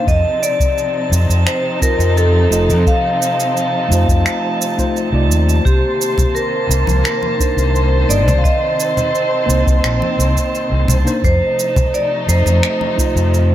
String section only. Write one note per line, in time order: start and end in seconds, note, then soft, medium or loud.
0.00 11.19 C3 medium
0.07 5.61 F3 medium
0.07 5.61 C4 medium
0.07 5.61 D#4 medium
5.65 11.19 D#3 medium
5.65 8.41 A#3 medium
5.65 11.19 C5 medium
8.45 11.21 C4 medium
11.24 13.55 C3 medium
11.24 13.55 F3 medium
11.24 13.55 A3 medium
11.24 13.55 D#4 medium